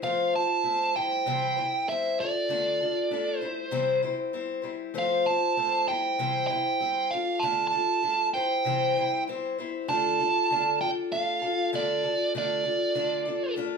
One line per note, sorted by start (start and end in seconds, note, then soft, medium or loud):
0.02 0.33 F3 medium
0.02 0.34 A3 medium
0.02 0.34 C4 medium
0.02 0.34 F4 medium
0.02 0.32 C5 medium
0.02 0.32 F5 medium
0.34 0.63 C4 soft
0.34 0.64 F4 soft
0.34 0.65 C5 soft
0.34 0.96 A5 medium
0.63 0.95 A3 medium
0.63 0.95 C4 medium
0.63 0.96 F4 medium
0.63 0.94 C5 medium
0.95 1.26 G3 soft
0.95 1.26 C4 soft
0.95 1.26 E4 soft
0.95 1.26 C5 soft
0.95 1.91 G5 medium
1.26 1.57 C3 medium
1.26 1.57 E3 medium
1.26 1.58 G3 medium
1.26 1.57 C4 medium
1.26 1.56 E4 medium
1.26 1.55 C5 medium
1.56 1.87 G3 soft
1.56 1.89 C4 soft
1.56 1.88 E4 soft
1.56 1.88 C5 medium
1.89 2.19 G3 medium
1.89 2.20 C4 medium
1.89 2.20 E4 medium
1.89 2.19 C5 medium
1.89 2.17 E5 medium
2.20 2.49 D4 soft
2.20 2.49 F4 soft
2.20 2.50 A4 soft
2.20 3.38 D5 medium
2.49 2.80 D3 medium
2.49 2.81 A3 medium
2.49 2.81 D4 medium
2.49 2.80 F4 medium
2.49 2.79 A4 medium
2.80 3.10 D4 soft
2.80 3.11 F4 soft
2.80 3.11 A4 soft
3.11 3.42 A3 medium
3.11 3.42 D4 medium
3.11 3.41 F4 medium
3.11 3.41 A4 medium
3.38 3.71 E4 soft
3.38 4.01 C5 medium
3.38 3.71 C5 medium
3.43 3.71 G3 soft
3.43 3.71 C4 soft
3.71 4.03 C3 medium
3.71 4.03 E3 medium
3.71 4.03 G3 medium
3.71 4.03 C4 loud
3.71 4.02 E4 loud
3.71 4.01 C5 loud
4.03 4.32 G3 soft
4.03 4.32 C4 soft
4.03 4.33 E4 medium
4.03 4.34 C5 medium
4.33 4.63 G3 medium
4.33 4.63 C4 medium
4.33 4.62 E4 medium
4.33 4.61 C5 medium
4.62 4.94 G3 soft
4.62 4.94 C4 medium
4.62 4.95 E4 medium
4.62 4.94 C5 medium
4.94 5.26 F3 medium
4.94 5.26 A3 medium
4.94 5.26 C4 medium
4.94 5.25 F4 medium
4.94 5.24 C5 medium
4.99 5.26 F5 medium
5.25 5.56 C4 soft
5.25 5.57 F4 soft
5.25 5.57 C5 medium
5.25 5.88 A5 loud
5.57 5.88 A3 medium
5.57 5.88 C4 medium
5.57 5.88 F4 medium
5.57 5.86 C5 medium
5.87 6.18 G3 soft
5.87 6.18 C4 soft
5.87 6.19 E4 medium
5.87 6.19 C5 soft
5.87 6.46 G5 medium
6.19 6.50 C3 medium
6.19 6.50 E3 medium
6.19 6.50 G3 medium
6.19 6.49 C4 medium
6.19 6.48 E4 medium
6.19 6.49 C5 medium
6.47 6.80 C4 medium
6.47 6.81 E4 medium
6.47 6.81 C5 medium
6.47 7.12 G5 loud
6.52 6.79 G3 soft
6.80 7.12 G3 medium
6.80 7.12 C4 medium
6.80 7.12 E4 medium
6.80 7.11 C5 medium
7.11 7.43 D4 soft
7.11 7.42 F4 medium
7.11 7.43 A4 soft
7.11 7.43 F5 medium
7.40 7.73 D3 medium
7.40 7.73 A3 medium
7.40 7.66 A5 medium
7.44 7.74 D4 medium
7.44 7.73 F4 medium
7.44 7.71 A4 medium
7.67 8.28 A5 loud
7.72 8.02 D4 soft
7.72 8.02 F4 soft
7.72 8.03 A4 medium
8.02 8.34 A3 medium
8.02 8.35 D4 medium
8.02 8.35 F4 medium
8.02 8.34 A4 medium
8.34 8.65 G3 soft
8.34 8.65 C4 soft
8.34 8.66 E4 medium
8.34 8.66 C5 medium
8.34 9.23 G5 medium
8.65 8.96 C3 medium
8.65 8.97 E3 medium
8.65 8.97 G3 medium
8.65 8.97 C4 medium
8.65 8.97 E4 medium
8.65 8.95 C5 medium
8.96 9.26 G3 soft
8.96 9.27 C4 soft
8.96 9.28 E4 medium
8.96 9.27 C5 medium
9.27 9.58 G3 medium
9.27 9.59 C4 medium
9.27 9.58 E4 medium
9.27 9.57 C5 medium
9.58 9.88 G3 soft
9.58 9.88 C4 soft
9.58 9.89 E4 medium
9.58 9.89 C5 medium
9.88 10.19 D3 medium
9.88 10.19 A3 medium
9.88 10.19 D4 medium
9.88 10.19 F4 medium
9.88 10.18 A4 medium
9.88 10.80 A5 loud
10.19 10.51 D4 soft
10.19 10.51 F4 soft
10.19 10.50 A4 medium
10.50 10.81 D3 medium
10.50 10.81 A3 medium
10.50 10.82 D4 medium
10.50 10.80 F4 medium
10.50 10.79 A4 medium
10.80 11.11 D4 soft
10.80 11.12 F4 medium
10.80 11.11 A4 medium
10.80 10.89 G5 medium
11.12 11.42 A3 medium
11.12 11.42 D4 medium
11.12 11.42 F4 medium
11.12 11.40 A4 medium
11.12 11.69 F5 medium
11.42 11.72 D4 soft
11.42 11.73 F4 soft
11.42 11.72 A4 medium
11.73 12.03 D3 medium
11.73 12.03 A3 medium
11.73 12.04 D4 medium
11.73 12.03 F4 medium
11.73 12.02 A4 medium
11.73 12.31 D5 medium
12.03 12.35 D4 soft
12.03 12.34 F4 soft
12.03 12.34 A4 medium
12.35 12.65 D3 medium
12.35 12.65 A3 medium
12.35 12.64 D4 medium
12.35 12.64 F4 medium
12.35 12.62 A4 medium
12.35 13.54 D5 medium
12.64 12.94 D4 soft
12.64 12.95 F4 soft
12.64 12.95 A4 soft
12.95 13.26 D3 medium
12.95 13.26 A3 medium
12.95 13.26 D4 medium
12.95 13.26 F4 medium
12.95 13.24 A4 medium
13.25 13.56 D4 medium
13.25 13.56 F4 soft
13.25 13.56 A4 medium
13.56 13.78 A3 medium
13.56 13.78 D4 medium
13.56 13.78 F4 medium
13.56 13.78 A4 medium